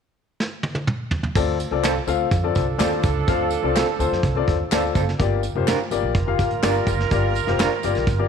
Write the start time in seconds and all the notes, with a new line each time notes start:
0.40 snare
0.63 high tom
0.75 high tom
0.87 mid tom
1.11 floor tom
1.23 floor tom
1.35 D2 C4 F4 A4 D5, kick, crash, tambourine
1.59 closed hi-hat, tambourine
1.71 C2 C4 F4 A4 D5
1.83 C4 F4 A4, snare, clap, closed hi-hat, tambourine
2.07 D2 C4 F4 A4 F5, closed hi-hat, tambourine
2.31 F2 F3 D4 A4, kick, closed hi-hat, tambourine
2.44 C4 F4 A4 D5
2.55 C2, kick, closed hi-hat, tambourine
2.78 D#2 C4 F4 A4 D5, snare, clap, closed hi-hat, tambourine
3.03 C#2, kick, closed hi-hat, tambourine
3.27 D2 C4 F4 A4 F5, kick, closed hi-hat, tambourine
3.51 closed hi-hat, tambourine
3.63 C2 C4 F4 A4 D5
3.75 C4 F4 A4, snare, clap, closed hi-hat, tambourine
3.99 D2 C4 F4 A4 C5, closed hi-hat, tambourine
4.11 F2, snare
4.23 C2, kick, closed hi-hat
4.35 C4 F4 A4 D5
4.48 D#2, kick, closed hi-hat
4.72 D2 C4 F4 A4 D5, snare, clap, closed hi-hat, tambourine
4.95 F#1 C4 F4 A4, kick, closed hi-hat, tambourine
5.09 snare
5.19 G1 A#3 F4 G4 D5, kick, closed hi-hat, tambourine
5.43 closed hi-hat, tambourine
5.55 F1 A#3 F4 G4 C5
5.67 D4 F4 A#4, snare, clap, closed hi-hat, tambourine
5.91 G1 A#3 F4 G4 D5, closed hi-hat, tambourine
6.02 A#1
6.14 F1 G3 F4 A#4, kick, closed hi-hat
6.26 A#3 F4 G4 F5
6.39 A1, kick, closed hi-hat, tambourine
6.51 closed hi-hat
6.62 G1 A#3 D4 F4 G4 A#4 D5, snare, clap, closed hi-hat, tambourine
6.86 F#1, kick, closed hi-hat, tambourine
7.00 snare
7.11 G1 A#3 F4 G4 D5, kick, closed hi-hat, tambourine
7.35 closed hi-hat, tambourine
7.47 F1 A#3 F4 G4 C5, snare
7.59 D4 F4 A#4, snare, clap, closed hi-hat, tambourine
7.83 G1 A#3 F4 G4 D5, closed hi-hat, tambourine
7.95 A#1, snare, closed hi-hat
8.07 G1, kick, closed hi-hat, tambourine
8.19 A#3 F4 G4 D5